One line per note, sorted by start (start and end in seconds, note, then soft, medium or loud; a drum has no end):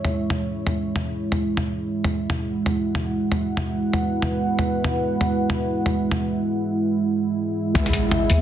0.00 8.41 G#3 medium
0.00 8.41 E4 medium
0.00 3.60 C#5 medium
0.00 2.33 E5 medium
0.05 mid tom soft
0.30 mid tom medium
0.67 mid tom soft
0.96 mid tom medium
1.32 mid tom soft
1.57 mid tom medium
2.04 mid tom soft
2.23 8.41 F#5 medium
2.30 mid tom medium
2.66 mid tom soft
2.95 mid tom medium
3.32 mid tom soft
3.50 7.75 B4 medium
3.57 mid tom medium
3.93 mid tom soft
4.22 mid tom medium
4.59 mid tom soft
4.84 mid tom medium
5.21 mid tom medium
5.50 mid tom medium
5.86 mid tom soft
6.11 mid tom medium
7.75 7.92 C#2 loud
7.75 kick loud
7.75 impact medium
7.86 closed hi-hat soft
7.86 mid tom medium
7.93 kick medium
7.93 closed hi-hat medium
8.09 8.41 C#5 medium
8.09 8.41 E5 medium
8.09 mid tom medium
8.30 8.41 D#2 medium
8.30 closed hi-hat medium